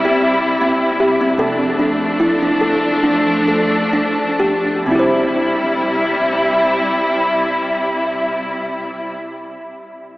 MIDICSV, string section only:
0, 0, Header, 1, 2, 480
1, 0, Start_track
1, 0, Key_signature, 0, "major"
1, 0, Tempo, 784314
1, 842, Time_signature, 4, 2, 24, 8
1, 1337, Tempo, 865801
1, 2297, Tempo, 940439
1, 2777, Tempo, 969305
1, 5411, End_track
2, 0, Start_track
2, 0, Title_t, "String section"
2, 0, Program_c, 0, 48
2, 0, Note_on_c, 0, 48, 51
2, 0, Note_on_c, 0, 55, 51
2, 0, Note_on_c, 0, 64, 56
2, 827, Note_off_c, 0, 48, 0
2, 828, Note_off_c, 0, 55, 0
2, 828, Note_off_c, 0, 64, 0
2, 843, Note_on_c, 0, 57, 47
2, 843, Note_on_c, 0, 62, 59
2, 846, Note_on_c, 0, 53, 51
2, 2759, Note_off_c, 0, 57, 0
2, 2759, Note_off_c, 0, 62, 0
2, 2760, Note_off_c, 0, 53, 0
2, 2784, Note_on_c, 0, 48, 46
2, 2784, Note_on_c, 0, 64, 56
2, 2786, Note_on_c, 0, 55, 43
2, 4895, Note_off_c, 0, 48, 0
2, 4895, Note_off_c, 0, 64, 0
2, 4897, Note_off_c, 0, 55, 0
2, 5411, End_track
0, 0, End_of_file